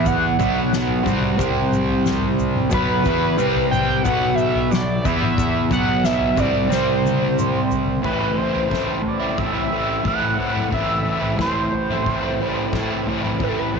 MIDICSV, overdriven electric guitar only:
0, 0, Header, 1, 3, 480
1, 0, Start_track
1, 0, Tempo, 666667
1, 48, Time_signature, 4, 2, 24, 8
1, 9933, End_track
2, 0, Start_track
2, 0, Title_t, "Overdriven electric guitar"
2, 0, Program_c, 0, 29
2, 0, Note_on_c, 0, 52, 78
2, 0, Note_on_c, 0, 59, 98
2, 0, Note_on_c, 0, 64, 103
2, 271, Note_off_c, 0, 59, 0
2, 277, Note_off_c, 0, 52, 0
2, 277, Note_off_c, 0, 64, 0
2, 280, Note_on_c, 0, 47, 92
2, 280, Note_on_c, 0, 54, 102
2, 280, Note_on_c, 0, 59, 106
2, 735, Note_off_c, 0, 47, 0
2, 738, Note_on_c, 0, 48, 99
2, 740, Note_off_c, 0, 54, 0
2, 743, Note_on_c, 0, 55, 85
2, 746, Note_off_c, 0, 59, 0
2, 749, Note_on_c, 0, 60, 95
2, 975, Note_off_c, 0, 48, 0
2, 981, Note_off_c, 0, 55, 0
2, 982, Note_off_c, 0, 60, 0
2, 984, Note_on_c, 0, 48, 95
2, 990, Note_on_c, 0, 55, 94
2, 991, Note_on_c, 0, 60, 108
2, 1940, Note_off_c, 0, 48, 0
2, 1943, Note_on_c, 0, 47, 102
2, 1945, Note_off_c, 0, 55, 0
2, 1946, Note_off_c, 0, 60, 0
2, 1953, Note_on_c, 0, 54, 111
2, 1953, Note_on_c, 0, 59, 110
2, 2183, Note_off_c, 0, 47, 0
2, 2188, Note_off_c, 0, 54, 0
2, 2188, Note_off_c, 0, 59, 0
2, 2195, Note_on_c, 0, 52, 93
2, 2199, Note_on_c, 0, 59, 109
2, 2206, Note_on_c, 0, 64, 105
2, 2427, Note_off_c, 0, 52, 0
2, 2430, Note_on_c, 0, 48, 104
2, 2431, Note_off_c, 0, 59, 0
2, 2434, Note_off_c, 0, 64, 0
2, 2434, Note_on_c, 0, 55, 87
2, 2437, Note_on_c, 0, 60, 108
2, 2904, Note_off_c, 0, 48, 0
2, 2907, Note_off_c, 0, 55, 0
2, 2908, Note_off_c, 0, 60, 0
2, 2910, Note_on_c, 0, 54, 92
2, 2915, Note_on_c, 0, 47, 85
2, 2920, Note_on_c, 0, 59, 98
2, 3381, Note_off_c, 0, 47, 0
2, 3384, Note_off_c, 0, 54, 0
2, 3389, Note_off_c, 0, 59, 0
2, 3390, Note_on_c, 0, 47, 61
2, 3394, Note_on_c, 0, 54, 75
2, 3583, Note_off_c, 0, 47, 0
2, 3585, Note_off_c, 0, 54, 0
2, 3633, Note_on_c, 0, 52, 95
2, 3636, Note_on_c, 0, 59, 82
2, 3636, Note_on_c, 0, 64, 89
2, 4105, Note_off_c, 0, 52, 0
2, 4106, Note_off_c, 0, 59, 0
2, 4106, Note_off_c, 0, 64, 0
2, 4108, Note_on_c, 0, 47, 92
2, 4109, Note_on_c, 0, 54, 99
2, 4116, Note_on_c, 0, 59, 106
2, 4572, Note_off_c, 0, 47, 0
2, 4575, Note_on_c, 0, 48, 88
2, 4580, Note_off_c, 0, 54, 0
2, 4583, Note_on_c, 0, 55, 95
2, 4586, Note_off_c, 0, 59, 0
2, 4589, Note_on_c, 0, 60, 104
2, 4803, Note_off_c, 0, 48, 0
2, 4812, Note_off_c, 0, 55, 0
2, 4812, Note_on_c, 0, 48, 86
2, 4813, Note_off_c, 0, 60, 0
2, 4820, Note_on_c, 0, 55, 93
2, 4822, Note_on_c, 0, 60, 101
2, 5772, Note_off_c, 0, 48, 0
2, 5774, Note_on_c, 0, 45, 88
2, 5777, Note_off_c, 0, 55, 0
2, 5778, Note_off_c, 0, 60, 0
2, 5781, Note_on_c, 0, 52, 90
2, 5784, Note_on_c, 0, 57, 91
2, 5790, Note_on_c, 0, 60, 86
2, 5794, Note_on_c, 0, 64, 100
2, 6143, Note_off_c, 0, 64, 0
2, 6146, Note_on_c, 0, 64, 60
2, 6150, Note_off_c, 0, 60, 0
2, 6152, Note_on_c, 0, 60, 60
2, 6161, Note_off_c, 0, 57, 0
2, 6164, Note_on_c, 0, 57, 55
2, 6252, Note_off_c, 0, 45, 0
2, 6255, Note_on_c, 0, 45, 91
2, 6258, Note_off_c, 0, 52, 0
2, 6261, Note_on_c, 0, 52, 86
2, 6264, Note_off_c, 0, 57, 0
2, 6266, Note_off_c, 0, 60, 0
2, 6267, Note_off_c, 0, 64, 0
2, 6267, Note_on_c, 0, 57, 94
2, 6269, Note_on_c, 0, 60, 100
2, 6270, Note_on_c, 0, 64, 102
2, 6376, Note_off_c, 0, 64, 0
2, 6379, Note_on_c, 0, 64, 54
2, 6389, Note_off_c, 0, 60, 0
2, 6392, Note_off_c, 0, 57, 0
2, 6392, Note_on_c, 0, 60, 55
2, 6395, Note_on_c, 0, 57, 50
2, 6495, Note_off_c, 0, 52, 0
2, 6498, Note_off_c, 0, 57, 0
2, 6501, Note_off_c, 0, 60, 0
2, 6501, Note_off_c, 0, 64, 0
2, 6623, Note_on_c, 0, 64, 57
2, 6639, Note_on_c, 0, 60, 51
2, 6642, Note_on_c, 0, 57, 55
2, 6860, Note_off_c, 0, 64, 0
2, 6863, Note_on_c, 0, 64, 59
2, 6870, Note_off_c, 0, 60, 0
2, 6873, Note_on_c, 0, 60, 54
2, 6880, Note_off_c, 0, 57, 0
2, 6883, Note_on_c, 0, 57, 56
2, 6985, Note_on_c, 0, 52, 69
2, 6996, Note_off_c, 0, 57, 0
2, 6996, Note_off_c, 0, 60, 0
2, 6999, Note_on_c, 0, 57, 67
2, 6999, Note_on_c, 0, 60, 60
2, 7005, Note_off_c, 0, 64, 0
2, 7008, Note_on_c, 0, 64, 78
2, 7223, Note_off_c, 0, 45, 0
2, 7226, Note_on_c, 0, 45, 81
2, 7227, Note_off_c, 0, 52, 0
2, 7230, Note_on_c, 0, 52, 71
2, 7232, Note_off_c, 0, 57, 0
2, 7235, Note_on_c, 0, 57, 92
2, 7237, Note_off_c, 0, 60, 0
2, 7240, Note_on_c, 0, 60, 82
2, 7241, Note_off_c, 0, 64, 0
2, 7244, Note_on_c, 0, 64, 92
2, 7340, Note_off_c, 0, 64, 0
2, 7343, Note_on_c, 0, 64, 67
2, 7350, Note_off_c, 0, 60, 0
2, 7353, Note_on_c, 0, 60, 59
2, 7360, Note_off_c, 0, 57, 0
2, 7363, Note_on_c, 0, 57, 52
2, 7457, Note_off_c, 0, 52, 0
2, 7460, Note_on_c, 0, 52, 73
2, 7461, Note_off_c, 0, 57, 0
2, 7464, Note_on_c, 0, 57, 68
2, 7472, Note_off_c, 0, 60, 0
2, 7475, Note_on_c, 0, 60, 71
2, 7478, Note_off_c, 0, 64, 0
2, 7481, Note_on_c, 0, 64, 77
2, 7576, Note_off_c, 0, 64, 0
2, 7579, Note_on_c, 0, 64, 79
2, 7587, Note_off_c, 0, 60, 0
2, 7590, Note_on_c, 0, 60, 63
2, 7596, Note_off_c, 0, 57, 0
2, 7599, Note_on_c, 0, 57, 61
2, 7701, Note_off_c, 0, 45, 0
2, 7701, Note_off_c, 0, 52, 0
2, 7704, Note_on_c, 0, 45, 102
2, 7704, Note_on_c, 0, 52, 102
2, 7712, Note_off_c, 0, 57, 0
2, 7713, Note_off_c, 0, 60, 0
2, 7715, Note_on_c, 0, 57, 104
2, 7716, Note_on_c, 0, 60, 93
2, 7719, Note_off_c, 0, 64, 0
2, 7722, Note_on_c, 0, 64, 92
2, 8058, Note_off_c, 0, 64, 0
2, 8061, Note_on_c, 0, 64, 73
2, 8071, Note_off_c, 0, 60, 0
2, 8074, Note_on_c, 0, 60, 65
2, 8079, Note_off_c, 0, 57, 0
2, 8082, Note_on_c, 0, 57, 58
2, 8175, Note_off_c, 0, 45, 0
2, 8178, Note_on_c, 0, 45, 88
2, 8184, Note_off_c, 0, 52, 0
2, 8187, Note_on_c, 0, 52, 85
2, 8189, Note_off_c, 0, 57, 0
2, 8191, Note_on_c, 0, 57, 94
2, 8194, Note_off_c, 0, 60, 0
2, 8197, Note_off_c, 0, 64, 0
2, 8197, Note_on_c, 0, 60, 86
2, 8199, Note_on_c, 0, 64, 107
2, 8308, Note_off_c, 0, 64, 0
2, 8311, Note_on_c, 0, 64, 56
2, 8315, Note_off_c, 0, 60, 0
2, 8318, Note_on_c, 0, 60, 56
2, 8326, Note_off_c, 0, 57, 0
2, 8329, Note_on_c, 0, 57, 52
2, 8446, Note_off_c, 0, 52, 0
2, 8449, Note_off_c, 0, 57, 0
2, 8449, Note_off_c, 0, 60, 0
2, 8453, Note_off_c, 0, 64, 0
2, 8571, Note_on_c, 0, 64, 61
2, 8576, Note_on_c, 0, 60, 59
2, 8587, Note_on_c, 0, 57, 51
2, 8788, Note_off_c, 0, 64, 0
2, 8791, Note_on_c, 0, 64, 64
2, 8802, Note_off_c, 0, 60, 0
2, 8805, Note_on_c, 0, 60, 58
2, 8808, Note_off_c, 0, 57, 0
2, 8811, Note_on_c, 0, 57, 55
2, 8923, Note_on_c, 0, 52, 59
2, 8925, Note_off_c, 0, 57, 0
2, 8928, Note_on_c, 0, 57, 63
2, 8936, Note_off_c, 0, 60, 0
2, 8939, Note_off_c, 0, 64, 0
2, 8939, Note_on_c, 0, 60, 75
2, 8942, Note_on_c, 0, 64, 70
2, 9167, Note_off_c, 0, 45, 0
2, 9167, Note_off_c, 0, 52, 0
2, 9170, Note_on_c, 0, 45, 89
2, 9170, Note_on_c, 0, 52, 78
2, 9172, Note_off_c, 0, 57, 0
2, 9175, Note_off_c, 0, 60, 0
2, 9175, Note_on_c, 0, 57, 86
2, 9178, Note_on_c, 0, 60, 80
2, 9185, Note_off_c, 0, 64, 0
2, 9187, Note_on_c, 0, 64, 80
2, 9283, Note_off_c, 0, 64, 0
2, 9285, Note_on_c, 0, 64, 66
2, 9290, Note_off_c, 0, 60, 0
2, 9293, Note_on_c, 0, 60, 54
2, 9301, Note_off_c, 0, 57, 0
2, 9304, Note_on_c, 0, 57, 55
2, 9409, Note_off_c, 0, 52, 0
2, 9410, Note_off_c, 0, 57, 0
2, 9412, Note_on_c, 0, 52, 65
2, 9413, Note_on_c, 0, 57, 61
2, 9417, Note_off_c, 0, 60, 0
2, 9420, Note_on_c, 0, 60, 72
2, 9422, Note_off_c, 0, 64, 0
2, 9425, Note_on_c, 0, 64, 80
2, 9521, Note_off_c, 0, 64, 0
2, 9524, Note_on_c, 0, 64, 72
2, 9531, Note_off_c, 0, 60, 0
2, 9534, Note_on_c, 0, 60, 66
2, 9536, Note_off_c, 0, 57, 0
2, 9539, Note_on_c, 0, 57, 54
2, 9641, Note_off_c, 0, 45, 0
2, 9644, Note_on_c, 0, 45, 91
2, 9647, Note_off_c, 0, 52, 0
2, 9650, Note_on_c, 0, 52, 102
2, 9653, Note_off_c, 0, 57, 0
2, 9654, Note_off_c, 0, 60, 0
2, 9656, Note_on_c, 0, 57, 101
2, 9657, Note_on_c, 0, 60, 99
2, 9658, Note_off_c, 0, 64, 0
2, 9660, Note_on_c, 0, 64, 95
2, 9933, Note_off_c, 0, 45, 0
2, 9933, Note_off_c, 0, 52, 0
2, 9933, Note_off_c, 0, 57, 0
2, 9933, Note_off_c, 0, 60, 0
2, 9933, Note_off_c, 0, 64, 0
2, 9933, End_track
3, 0, Start_track
3, 0, Title_t, "Muted overdriven electric guitar strokes"
3, 6498, Note_on_c, 9, 29, 43
3, 6570, Note_off_c, 9, 29, 0
3, 8449, Note_on_c, 9, 29, 43
3, 8521, Note_off_c, 9, 29, 0
3, 9933, End_track
0, 0, End_of_file